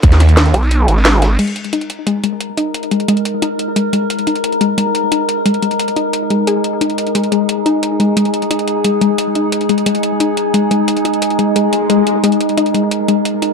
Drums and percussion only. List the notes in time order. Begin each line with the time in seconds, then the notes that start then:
0.02 kick, closed hi-hat
0.12 snare, closed hi-hat
0.20 snare, closed hi-hat, open hi-hat
0.29 closed hi-hat
0.37 snare, closed hi-hat
0.46 snare, closed hi-hat
0.54 closed hi-hat
0.63 closed hi-hat
0.71 closed hi-hat
0.88 closed hi-hat
0.97 snare
1.04 snare, closed hi-hat
1.22 snare, closed hi-hat
1.39 closed hi-hat, crash
1.47 closed hi-hat
1.56 closed hi-hat
1.64 closed hi-hat
1.73 closed hi-hat
1.81 closed hi-hat
1.90 closed hi-hat
2.07 closed hi-hat
2.24 closed hi-hat
2.41 closed hi-hat
2.57 closed hi-hat
2.74 closed hi-hat
2.83 closed hi-hat
2.91 closed hi-hat
3.00 closed hi-hat
3.08 closed hi-hat
3.17 closed hi-hat
3.25 closed hi-hat
3.42 closed hi-hat
3.59 closed hi-hat
3.76 closed hi-hat
3.93 closed hi-hat
4.10 closed hi-hat
4.19 closed hi-hat
4.27 closed hi-hat
4.36 closed hi-hat
4.44 closed hi-hat
4.52 closed hi-hat
4.61 closed hi-hat
4.78 closed hi-hat
4.95 closed hi-hat
5.12 closed hi-hat
5.29 closed hi-hat
5.46 closed hi-hat
5.54 closed hi-hat
5.62 closed hi-hat
5.71 closed hi-hat
5.80 closed hi-hat
5.88 closed hi-hat
5.96 closed hi-hat
6.13 closed hi-hat
6.30 closed hi-hat
6.47 closed hi-hat
6.64 closed hi-hat
6.81 closed hi-hat
6.90 closed hi-hat
6.98 closed hi-hat
7.07 closed hi-hat
7.15 closed hi-hat
7.24 closed hi-hat
7.32 closed hi-hat
7.49 closed hi-hat
7.66 closed hi-hat
7.83 closed hi-hat
8.00 closed hi-hat
8.17 closed hi-hat
8.25 closed hi-hat
8.34 closed hi-hat
8.42 closed hi-hat
8.51 closed hi-hat
8.59 closed hi-hat
8.68 closed hi-hat
8.84 closed hi-hat
9.01 closed hi-hat
9.18 closed hi-hat
9.35 closed hi-hat
9.52 closed hi-hat
9.61 closed hi-hat
9.69 closed hi-hat
9.78 closed hi-hat
9.86 closed hi-hat
9.95 closed hi-hat
10.03 closed hi-hat
10.20 closed hi-hat
10.37 closed hi-hat
10.54 closed hi-hat
10.71 closed hi-hat
10.88 closed hi-hat
10.97 closed hi-hat
11.05 closed hi-hat
11.14 closed hi-hat
11.22 closed hi-hat
11.30 closed hi-hat
11.39 closed hi-hat
11.56 closed hi-hat
11.73 closed hi-hat
11.90 closed hi-hat
12.07 closed hi-hat
12.24 closed hi-hat
12.32 closed hi-hat
12.41 closed hi-hat
12.49 closed hi-hat
12.58 closed hi-hat
12.66 closed hi-hat
12.75 closed hi-hat
12.91 closed hi-hat
13.08 closed hi-hat
13.25 closed hi-hat
13.42 closed hi-hat